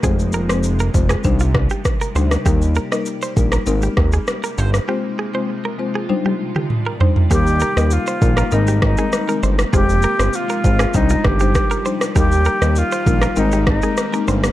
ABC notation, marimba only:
X:1
M:4/4
L:1/16
Q:1/4=99
K:Eb
V:1 name="Marimba"
[A,CFc]3 [A,CFc]3 [A,CFc]2 [G,DEc]6 [G,DEc] z | [G,B,EB]3 [G,B,EB]3 [G,B,EB]2 [A,CEB]8 | [A,CFc]3 [A,CFc]3 [A,CFc]2 [G,DEc]6 [G,DEc] z | [G,B,EB]3 [G,B,EB] z2 [G,B,EB] z [A,CEB] z2 [A,CEB] z [A,CEB] z2 |
[A,CFc]3 [A,CFc] z2 [A,CFc] z [G,DEc] z2 [G,DEc] z2 [G,DEc] z | [G,B,EB]3 [G,B,EB] z2 [G,B,EB] z [A,CEB] z2 [A,CEB] z [A,CEB] z2 |]